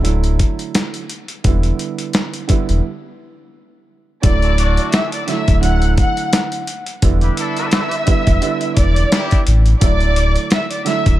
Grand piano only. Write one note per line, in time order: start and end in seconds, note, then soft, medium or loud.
0.03 1.01 D3 medium
0.03 1.01 F#3 medium
0.03 1.02 A3 medium
0.03 1.02 E4 loud
1.44 2.41 D3 medium
1.44 2.42 G3 medium
1.44 2.42 B3 medium
1.44 2.43 E4 loud
2.48 2.81 D3 medium
2.48 2.81 G3 medium
2.48 2.81 B3 medium
2.48 2.82 E4 loud
4.22 5.20 D3 medium
4.22 5.21 F#3 medium
4.22 5.21 A3 medium
4.22 5.21 E4 loud
5.27 5.60 D3 medium
5.27 5.60 F#3 medium
5.27 5.61 A3 medium
5.27 5.61 E4 loud
5.61 6.59 D3 medium
5.61 6.60 F#3 medium
5.61 6.60 A3 medium
5.61 6.60 E4 loud
7.02 8.00 D3 loud
7.02 8.00 G3 medium
7.02 8.00 B3 medium
7.02 8.01 E4 loud
8.06 8.39 D3 medium
8.06 8.39 G3 medium
8.06 8.40 B3 medium
8.06 8.40 E4 loud
8.41 9.71 D3 loud
8.41 9.72 G3 medium
8.41 9.72 B3 medium
8.41 9.72 E4 loud
9.81 10.78 D3 medium
9.81 10.79 F#3 medium
9.81 10.79 A3 medium
9.81 10.79 E4 loud
10.85 11.17 D3 medium
10.85 11.18 F#3 medium
10.85 11.19 A3 medium
10.85 11.19 E4 loud